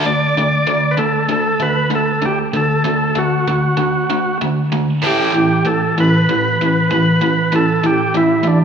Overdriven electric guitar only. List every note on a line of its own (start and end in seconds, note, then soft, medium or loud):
0.04 0.33 D3 medium
0.04 0.33 A3 medium
0.37 0.65 D3 medium
0.37 0.66 A3 medium
0.67 0.95 D3 medium
0.67 0.95 A3 medium
0.98 1.26 D3 soft
0.98 1.26 A3 medium
1.29 1.57 D3 medium
1.29 1.57 A3 medium
1.60 1.88 D3 medium
1.60 1.88 A3 medium
1.90 2.19 D3 medium
1.90 2.19 A3 medium
2.22 2.50 D3 medium
2.22 2.50 A3 medium
2.53 2.82 D3 medium
2.53 2.82 A3 medium
2.84 3.13 D3 medium
2.84 3.13 A3 medium
3.15 3.44 D3 medium
3.15 3.44 A3 medium
3.48 3.75 D3 medium
3.48 3.75 A3 medium
3.77 4.06 D3 medium
3.77 4.06 A3 medium
4.10 4.38 D3 medium
4.10 4.38 A3 medium
4.42 4.69 D3 medium
4.42 4.69 A3 medium
4.72 5.00 D3 medium
4.72 5.00 A3 medium
5.02 5.32 A2 medium
5.02 5.32 E3 medium
5.02 5.33 A3 loud
5.35 5.62 A2 medium
5.35 5.62 E3 medium
5.65 5.93 A2 medium
5.65 5.94 E3 medium
5.98 6.25 A2 medium
5.98 6.25 E3 medium
6.29 6.56 A2 medium
6.29 6.56 E3 medium
6.61 6.88 A2 medium
6.61 6.88 E3 medium
6.91 7.18 A2 medium
6.91 7.18 E3 medium
7.22 7.49 A2 medium
7.22 7.50 E3 medium
7.52 7.80 A2 medium
7.52 7.81 E3 medium
7.84 8.12 A2 medium
7.84 8.12 E3 medium
8.15 8.43 A2 medium
8.15 8.43 E3 medium
8.44 8.64 A2 medium
8.44 8.64 E3 medium